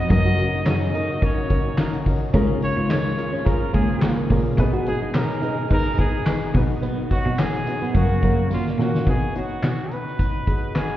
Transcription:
Already playing: F#3 B3 D#4 F#4 G#4 B4
0.09 F#2 C#3 A#3 C#4 D#4 F#4 A#4 D#5, kick, closed hi-hat
0.25 F#4
0.37 C#4 D#4 F#4 A#4, closed hi-hat
0.54 D#4
0.65 F#2 C#4 D#4 F#4 G#4 D#5, snare, clap, closed hi-hat, tambourine
0.83 closed hi-hat
0.94 C#4 D#4 F#4 A#4, closed hi-hat
1.10 snare
1.22 C#4 D#4 F#4 A#4 C#5, kick, closed hi-hat
1.49 C#4 D#4 F#4 A#4, kick, closed hi-hat
1.77 C#4 D#4 F#4 A#4, snare, clap, closed hi-hat, tambourine
1.93 closed hi-hat
2.06 C#4 D#4 F#4 A#4, kick, open hi-hat
2.33 C#2 G#2 F3 G#3 A#3 C#4 F4 G#4 A#4, kick, closed hi-hat
2.61 C#4 F4 C#5, closed hi-hat
2.77 C#2 F4
2.89 C#4 D#4 F4 G#4 A#4 C#5, snare, clap, closed hi-hat, tambourine
3.17 C#4 F4 G#4 A#4, closed hi-hat
3.33 C#4, snare
3.44 C#4 F4 G#4 A#4, kick, closed hi-hat
3.73 C#2 A#3 C#4 F4 G#4 A#4, kick, closed hi-hat
4.01 A#3 C#4 F4 G#4 A#4, snare, clap, closed hi-hat, tambourine
4.30 A#2 C#4 F4 G#4 A#4, kick, open hi-hat
4.58 B2 D#3 B3 D#4 G#4 B4, kick, closed hi-hat
4.73 F#4
4.86 B3 D#4 G#4 B4, closed hi-hat
5.02 D#4
5.14 B2 B3 C#4 D#4 G#4 A#4 B4, snare, clap, closed hi-hat, tambourine
5.31 closed hi-hat
5.42 B3 D#4 G#4 B4, closed hi-hat
5.70 B3 D#4 G#4 A#4 B4, kick, closed hi-hat
5.98 B3 D#4 G#4 B4, kick, closed hi-hat
6.26 B3 D#4 G#4 B4, snare, clap, closed hi-hat, tambourine
6.54 B2 F#3 B3 D#4 F#4 B4, kick, open hi-hat
6.82 B3, closed hi-hat
7.11 B3 D#4 F#4 C#5, kick, closed hi-hat
7.26 B2 D#4
7.38 B3 C#4 D#4 F#4 G#4 B4, snare, clap, closed hi-hat, tambourine
7.55 closed hi-hat
7.67 B3 D#4 F#4 B4, closed hi-hat
7.82 B3, snare
7.94 F#2 A#2 C#3 A#3 C#4 F#4 A#4, kick, closed hi-hat
8.22 F#2 A#3 C#4 F#4 A#4, kick, closed hi-hat
8.50 A#3 C#4 F4 F#4 A#4, snare, tambourine
8.67 snare
8.78 A#2 A#3 C#4 F#4 A#4, snare
8.95 snare
9.07 B2 B3 D#4 F#4 G#4 B4, kick, closed hi-hat
9.35 B3 D#4 F#4 C#5, closed hi-hat
9.63 B2 B3 D#4 F#4 B4, snare, clap, closed hi-hat
9.91 B3 D#4 F#4 B4, closed hi-hat
10.07 snare
10.19 B3 D#4 F#4 B4, kick, closed hi-hat
10.47 B3 D#4 F#4 G#4, kick, closed hi-hat
10.75 B3 D#4 F#4 G#4 B4, snare, clap, closed hi-hat

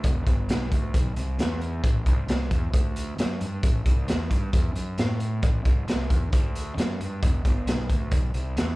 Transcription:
0.04 E1, kick, closed hi-hat
0.26 G1, kick, closed hi-hat
0.49 B1, snare, closed hi-hat
0.72 D2, kick, closed hi-hat
0.94 B1, kick, closed hi-hat
1.16 C2, closed hi-hat
1.38 E2, snare, closed hi-hat
1.61 closed hi-hat
1.84 A1, kick, closed hi-hat
2.06 C2, kick, closed hi-hat
2.28 C2, snare, closed hi-hat
2.51 E2, kick, closed hi-hat
2.73 D2, kick, closed hi-hat
2.96 closed hi-hat
3.19 F#2, snare, closed hi-hat
3.41 G2, closed hi-hat
3.63 A1, kick, closed hi-hat
3.86 C2, kick, closed hi-hat
4.08 E2, snare, closed hi-hat
4.31 G2, kick, closed hi-hat
4.53 E2, kick, closed hi-hat
4.75 F#2, closed hi-hat
4.98 A2, snare, closed hi-hat
5.20 closed hi-hat
5.43 A1, kick, closed hi-hat
5.65 C2, kick, closed hi-hat
5.87 C2, snare, closed hi-hat
6.10 E2, kick, closed hi-hat
6.33 D2, kick, closed hi-hat
6.55 closed hi-hat
6.77 F#2, snare, closed hi-hat
7.00 G2, closed hi-hat
7.23 E1, kick, closed hi-hat
7.45 G1, kick, closed hi-hat
7.67 B1, snare, closed hi-hat
7.90 D2, kick, closed hi-hat
8.11 B1, kick, closed hi-hat
8.34 C2, closed hi-hat
8.57 E2, snare, closed hi-hat

